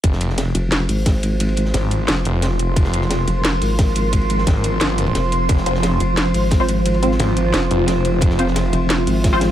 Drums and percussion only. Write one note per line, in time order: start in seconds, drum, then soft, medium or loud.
0.04 kick loud
0.04 closed hi-hat medium
0.04 ride medium
0.13 snare soft
0.21 closed hi-hat medium
0.21 ride medium
0.30 snare soft
0.38 snare loud
0.38 closed hi-hat medium
0.38 ride medium
0.55 closed hi-hat medium
0.55 ride medium
0.72 snare loud
0.72 closed hi-hat loud
0.72 ride medium
0.89 closed hi-hat medium
0.89 open hi-hat medium
1.06 kick loud
1.06 snare loud
1.06 closed hi-hat medium
1.06 ride medium
1.23 closed hi-hat medium
1.23 ride medium
1.40 closed hi-hat medium
1.40 ride medium
1.49 ride soft
1.57 closed hi-hat medium
1.57 ride medium
1.66 snare soft
1.74 snare loud
1.74 closed hi-hat medium
1.74 ride medium
1.91 closed hi-hat medium
1.91 ride medium
2.08 snare loud
2.08 closed hi-hat medium
2.08 ride medium
2.25 closed hi-hat medium
2.25 ride medium
2.42 snare loud
2.42 closed hi-hat medium
2.42 ride medium
2.59 closed hi-hat medium
2.59 ride medium
2.76 kick loud
2.76 closed hi-hat medium
2.76 ride medium
2.85 snare medium
2.94 closed hi-hat medium
2.94 ride medium
3.02 snare soft
3.10 snare loud
3.10 closed hi-hat medium
3.10 ride medium
3.27 closed hi-hat medium
3.27 ride medium
3.45 snare loud
3.45 closed hi-hat medium
3.45 ride medium
3.62 closed hi-hat medium
3.62 open hi-hat medium
3.79 kick loud
3.79 snare loud
3.79 closed hi-hat medium
3.79 ride medium
3.95 closed hi-hat medium
3.95 ride medium
4.13 kick medium
4.13 closed hi-hat medium
4.13 ride medium
4.21 ride soft
4.30 closed hi-hat medium
4.30 ride medium
4.38 snare soft
4.47 kick loud
4.47 snare loud
4.47 closed hi-hat medium
4.47 ride medium
4.64 closed hi-hat medium
4.64 ride medium
4.80 snare loud
4.80 closed hi-hat medium
4.80 ride medium
4.98 closed hi-hat medium
4.98 ride medium
5.07 ride soft
5.15 snare loud
5.15 closed hi-hat medium
5.15 ride medium
5.32 closed hi-hat medium
5.32 ride medium
5.49 kick loud
5.49 closed hi-hat medium
5.49 ride medium
5.57 snare soft
5.66 closed hi-hat medium
5.66 ride medium
5.75 snare soft
5.83 snare loud
5.83 closed hi-hat medium
5.83 ride medium
6.00 closed hi-hat medium
6.00 ride medium
6.17 snare loud
6.17 closed hi-hat medium
6.17 ride medium
6.34 closed hi-hat medium
6.34 open hi-hat medium
6.51 kick loud
6.51 snare loud
6.51 closed hi-hat medium
6.51 ride medium
6.69 closed hi-hat medium
6.69 ride medium
6.85 closed hi-hat medium
6.85 ride medium
6.94 ride soft
7.03 closed hi-hat medium
7.03 ride medium
7.12 snare soft
7.19 snare loud
7.19 closed hi-hat medium
7.19 ride medium
7.37 closed hi-hat medium
7.37 ride medium
7.54 snare loud
7.54 closed hi-hat medium
7.54 ride medium
7.71 closed hi-hat medium
7.71 ride medium
7.88 snare loud
7.88 closed hi-hat medium
7.88 ride medium
8.05 closed hi-hat medium
8.05 ride medium
8.21 kick loud
8.21 closed hi-hat medium
8.21 ride medium
8.30 snare soft
8.39 closed hi-hat medium
8.39 ride medium
8.47 snare soft
8.56 snare loud
8.56 closed hi-hat medium
8.56 ride medium
8.73 closed hi-hat medium
8.73 ride medium
8.90 snare loud
8.90 closed hi-hat loud
8.90 ride medium
9.07 closed hi-hat medium
9.07 open hi-hat medium
9.24 kick loud
9.24 snare loud
9.24 closed hi-hat medium
9.24 ride medium
9.41 snare loud
9.41 closed hi-hat medium
9.41 ride medium